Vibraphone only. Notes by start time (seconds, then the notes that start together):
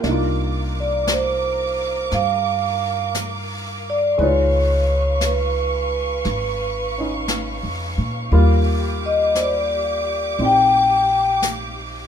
0.80 D5
1.12 C5
2.14 F5
3.90 D5
4.22 C#5
5.24 B4
9.06 D#5
9.35 C5
9.40 D5
10.45 G5